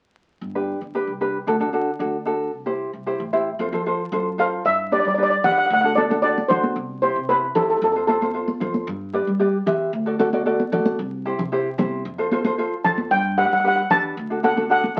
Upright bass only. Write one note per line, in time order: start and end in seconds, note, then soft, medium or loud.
0.41 0.74 G1 medium
0.81 1.03 G1 medium
1.07 1.40 C2 medium
1.47 1.59 D2 medium
1.61 1.93 D3 medium
2.00 2.53 D2 medium
2.53 2.86 C2 medium
2.93 3.15 C2 medium
3.20 3.52 A1 medium
3.59 3.70 F2 medium
3.72 4.05 F3 medium
4.12 4.55 F#2 medium
4.65 4.97 G2 medium
5.05 5.37 G3 medium
5.44 5.66 E2 medium
5.70 6.36 D2 medium
6.49 6.71 D2 medium
6.76 7.09 C2 medium
7.16 7.48 C3 medium
7.55 7.77 E2 medium
7.82 8.47 F2 medium
8.61 8.83 F2 medium
8.87 9.20 G2 medium
9.27 9.60 G3 medium
9.67 9.88 E2 medium
9.93 10.58 D2 medium
10.73 10.94 D2 medium
10.99 11.32 C2 medium
11.39 11.71 C3 medium
11.78 12.00 C2 medium
12.05 12.71 F2 medium
12.85 13.06 F2 medium
13.11 13.44 G2 medium
13.51 13.84 G3 medium
13.90 14.12 E2 medium
14.17 14.83 D2 medium
14.97 15.00 D2 medium